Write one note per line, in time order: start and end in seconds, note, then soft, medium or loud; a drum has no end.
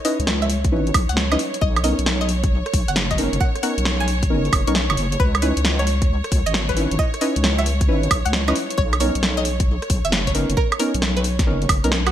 0.00 12.12 C#5 medium
0.05 0.17 C#4 medium
0.05 0.17 D#4 medium
0.05 0.17 E4 medium
0.05 0.17 B4 medium
0.05 0.28 D#5 loud
0.05 open hi-hat loud
0.20 0.74 C#2 medium
0.20 closed hi-hat medium
0.27 cross-stick medium
0.27 snare loud
0.42 0.65 E5 loud
0.42 closed hi-hat soft
0.50 open hi-hat loud
0.64 kick loud
0.64 closed hi-hat medium
0.72 0.91 G#1 medium
0.72 0.84 C#4 medium
0.72 0.84 D#4 medium
0.72 0.84 E4 medium
0.72 0.84 B4 medium
0.87 closed hi-hat soft
0.94 1.06 B1 loud
0.94 kick loud
0.94 open hi-hat loud
0.94 high woodblock medium
1.09 1.37 C#2 medium
1.09 1.22 F#5 medium
1.09 closed hi-hat medium
1.17 snare loud
1.32 1.38 C#4 medium
1.32 1.38 D#4 medium
1.32 1.38 E4 medium
1.32 1.38 B4 loud
1.32 1.54 D#5 medium
1.32 closed hi-hat medium
1.32 high woodblock medium
1.39 open hi-hat loud
1.54 closed hi-hat medium
1.61 1.94 B1 loud
1.61 1.79 D#5 loud
1.61 kick loud
1.76 cross-stick medium
1.76 closed hi-hat soft
1.76 high woodblock medium
1.84 1.96 B3 medium
1.84 1.96 C#4 medium
1.84 1.96 D#4 medium
1.84 1.96 A#4 medium
1.84 2.07 D#5 medium
1.84 open hi-hat loud
1.99 2.49 B1 medium
1.99 closed hi-hat medium
2.06 cross-stick medium
2.06 snare loud
2.21 2.44 D#5 medium
2.21 closed hi-hat soft
2.29 open hi-hat loud
2.44 kick loud
2.44 closed hi-hat medium
2.51 2.63 B1 medium
2.66 cross-stick medium
2.66 closed hi-hat soft
2.74 2.86 B1 medium
2.74 kick loud
2.74 open hi-hat loud
2.88 3.28 F#1 loud
2.88 3.01 F#5 medium
2.88 closed hi-hat medium
2.96 snare loud
3.11 3.34 D#5 medium
3.11 kick medium
3.11 closed hi-hat medium
3.18 3.31 B3 medium
3.18 3.31 C#4 medium
3.18 3.31 D#4 medium
3.18 3.31 A#4 loud
3.18 open hi-hat loud
3.33 3.39 F#1 loud
3.33 closed hi-hat medium
3.40 3.58 F#5 loud
3.40 kick loud
3.56 cross-stick medium
3.56 closed hi-hat medium
3.63 3.75 B3 medium
3.63 3.75 C#4 medium
3.63 3.75 D#4 medium
3.63 3.75 A#4 medium
3.63 3.86 F#5 medium
3.63 open hi-hat loud
3.78 4.32 B1 medium
3.78 closed hi-hat medium
3.85 cross-stick medium
3.85 snare loud
4.00 4.23 G#5 medium
4.00 closed hi-hat soft
4.08 open hi-hat loud
4.23 kick loud
4.23 closed hi-hat medium
4.30 4.50 F#1 medium
4.30 4.43 B3 medium
4.30 4.43 C#4 medium
4.30 4.42 D#4 medium
4.30 4.42 A#4 medium
4.45 closed hi-hat soft
4.53 4.65 F#1 medium
4.53 kick loud
4.53 open hi-hat loud
4.53 high woodblock medium
4.67 4.89 B1 medium
4.67 4.74 B3 medium
4.67 4.74 C#4 medium
4.67 4.74 D#4 medium
4.67 4.74 A#4 medium
4.67 4.80 C#6 medium
4.67 closed hi-hat medium
4.75 snare loud
4.90 4.96 F#1 medium
4.90 5.13 C#6 medium
4.90 closed hi-hat medium
4.90 high woodblock medium
4.97 5.17 F#1 medium
4.97 open hi-hat loud
5.12 closed hi-hat medium
5.20 5.52 C#2 loud
5.20 5.37 B4 loud
5.20 kick loud
5.35 cross-stick medium
5.35 closed hi-hat medium
5.35 high woodblock medium
5.42 5.54 C#4 medium
5.42 5.54 D#4 medium
5.42 5.54 E4 medium
5.42 5.65 B4 medium
5.42 5.55 B4 medium
5.42 open hi-hat loud
5.57 6.07 C#2 medium
5.57 closed hi-hat medium
5.65 cross-stick medium
5.65 snare loud
5.79 6.02 C#5 loud
5.79 closed hi-hat soft
5.87 open hi-hat loud
6.02 kick loud
6.02 closed hi-hat medium
6.09 6.21 C#2 medium
6.24 cross-stick medium
6.24 closed hi-hat soft
6.32 6.44 C#2 loud
6.32 kick loud
6.32 open hi-hat loud
6.46 6.87 G#1 loud
6.46 6.59 D#5 medium
6.46 closed hi-hat medium
6.54 snare loud
6.69 6.92 B4 medium
6.69 kick medium
6.69 closed hi-hat medium
6.76 6.89 C#4 medium
6.76 6.89 D#4 medium
6.76 6.89 E4 medium
6.76 6.89 B4 medium
6.76 open hi-hat loud
6.91 6.97 G#1 loud
6.91 closed hi-hat medium
6.99 7.17 D#5 loud
6.99 kick loud
7.14 cross-stick medium
7.14 closed hi-hat medium
7.21 7.34 C#4 medium
7.21 7.34 D#4 medium
7.21 7.34 E4 medium
7.21 7.34 B4 medium
7.21 7.44 D#5 loud
7.21 open hi-hat loud
7.36 7.90 C#2 medium
7.36 closed hi-hat medium
7.44 cross-stick medium
7.44 snare loud
7.58 7.81 E5 loud
7.58 closed hi-hat soft
7.66 open hi-hat loud
7.81 kick loud
7.81 closed hi-hat medium
7.88 8.08 G#1 medium
7.88 8.01 C#4 medium
7.88 8.01 D#4 medium
7.88 8.01 E4 medium
7.88 8.01 B4 medium
8.03 closed hi-hat soft
8.11 8.23 B1 medium
8.11 kick loud
8.11 open hi-hat loud
8.11 high woodblock medium
8.25 8.53 C#2 medium
8.25 8.39 F#5 medium
8.25 closed hi-hat medium
8.33 snare loud
8.48 8.54 C#4 medium
8.48 8.54 D#4 medium
8.48 8.54 E4 medium
8.48 8.54 B4 loud
8.48 8.71 D#5 medium
8.48 closed hi-hat medium
8.48 high woodblock medium
8.56 open hi-hat loud
8.70 closed hi-hat medium
8.78 9.11 B1 loud
8.78 8.95 C#5 loud
8.78 kick loud
8.93 cross-stick medium
8.93 closed hi-hat medium
8.93 high woodblock medium
9.00 9.13 B3 medium
9.00 9.13 C#4 medium
9.00 9.13 D#4 medium
9.00 9.13 A#4 medium
9.00 9.23 C#5 medium
9.00 open hi-hat loud
9.15 9.65 B1 medium
9.15 closed hi-hat medium
9.23 cross-stick medium
9.23 snare loud
9.37 9.60 D#5 loud
9.37 closed hi-hat soft
9.45 open hi-hat loud
9.60 kick loud
9.60 closed hi-hat medium
9.68 9.80 B1 medium
9.82 cross-stick medium
9.82 closed hi-hat soft
9.90 10.02 B1 loud
9.90 kick loud
9.90 open hi-hat loud
10.05 10.45 F#1 medium
10.05 10.18 E5 medium
10.05 closed hi-hat medium
10.12 snare loud
10.27 10.50 C#5 medium
10.27 kick medium
10.27 closed hi-hat medium
10.35 10.47 B3 medium
10.35 10.47 C#4 medium
10.35 10.47 D#4 medium
10.35 10.47 A#4 loud
10.35 open hi-hat loud
10.49 10.56 F#1 loud
10.49 closed hi-hat medium
10.57 10.75 A#4 loud
10.57 kick loud
10.72 cross-stick medium
10.72 closed hi-hat medium
10.72 high woodblock medium
10.79 10.92 B3 medium
10.79 10.92 C#4 medium
10.79 10.92 D#4 medium
10.79 11.03 A#4 loud
10.79 10.92 A#4 medium
10.79 open hi-hat loud
10.94 11.48 B1 medium
10.94 closed hi-hat medium
11.02 cross-stick medium
11.02 snare loud
11.17 11.39 B4 loud
11.17 closed hi-hat soft
11.24 open hi-hat loud
11.39 kick loud
11.39 snare medium
11.39 closed hi-hat medium
11.47 11.66 F#1 medium
11.47 11.59 B3 medium
11.47 11.59 C#4 medium
11.47 11.59 D#4 medium
11.47 11.59 A#4 medium
11.62 closed hi-hat soft
11.69 11.81 F#1 medium
11.69 kick loud
11.69 open hi-hat loud
11.69 high woodblock medium
11.84 12.12 B1 medium
11.84 11.90 B3 medium
11.84 11.90 C#4 medium
11.84 11.90 D#4 medium
11.84 11.90 A#4 loud
11.84 11.97 A#4 medium
11.84 closed hi-hat medium
11.92 cross-stick medium
11.92 snare loud
12.06 12.12 F#4 medium
12.06 cross-stick medium
12.06 closed hi-hat medium
12.06 high woodblock medium